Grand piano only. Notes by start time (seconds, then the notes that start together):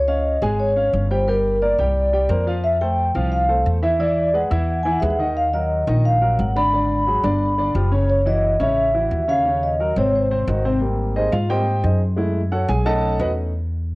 0.08 C#4 C#5 F5
0.42 G#3 G#4 G#5
0.76 C#4 C#5 F5
1.11 G3 G4 G5
1.28 G3 G4 G5
1.62 A#3 A#4 D5
1.79 G3 G4 G5
2.13 G3 G4 G5
2.29 A#3 A#4 C5
2.47 F3 F4 F5
2.81 A3 A4 C5
3.15 F3 F4 F5
3.49 A3 A4 C5
3.82 E3 E4 E5
3.99 E3 E4 E5
4.34 G#3 G#4 B4
4.50 E3 E4 E5
4.85 E3 E4 E5
5.01 G#3 G#4 B4
5.19 D#3 D#4 D#5
5.53 F#3 F#4 A#4
5.87 D#3 D#4 D#5
6.21 F#3 F#4 A#4
6.56 D3 D4 D5
6.73 D3 D4 D5
7.07 F#3 F#4 G#4
7.23 D3 D4 D5
7.58 D3 D4 D5
7.75 F3 F4 G4
7.92 C#3 C#4 C#5
8.26 E3 E4 F#4
8.60 C#3 C#4 C#5
8.94 E3 E4 F#4
9.28 C#3 C#4 C#5
9.45 C#3 C#4 C#5
9.80 F#3 F#4 A#4
9.97 C3 C4 C5
10.31 C3 C4 C5
10.48 D#3 D#4 F#4
10.65 C3 C4 C5
10.81 G3 A#3 C4
11.16 D#4 G#4 C5 D#5
11.32 F4 F5
11.49 G3 A#3 C4 G4 C5 D#5 G5
11.83 D#4 G#4 C5 D#5
12.16 G#3 A3 E4
12.52 F#4 A4 C#5 F#5
12.69 G#4 G#5
12.85 A3 C#4 D#4 A4 D#5 F#5 A5
13.20 F#4 B4 D#5 F#5